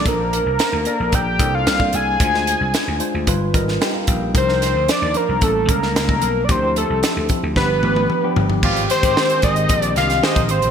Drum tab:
CC |----------------|----------------|----------------|----------------|
HH |x-x-x-x-x-x-x-x-|x-x-x-x-x-x-x-x-|x-x-x-x-x-x-x-x-|x-x-x-x---------|
SD |----o-------o---|-o--o------oo---|-oo-o------oo---|----o---o-------|
T1 |----------------|----------------|----------------|----------oo----|
T2 |----------------|----------------|----------------|------------o---|
FT |----------------|----------------|----------------|--------------oo|
BD |o-------o-o--o--|o-------o-o---o-|o-------o-o--o--|o-----o-o-------|

CC |x---------------|
HH |-xxx-xxxxxxx-xxx|
SD |----o-----ooo---|
T1 |----------------|
T2 |----------------|
FT |----------------|
BD |o--o--o-o----o--|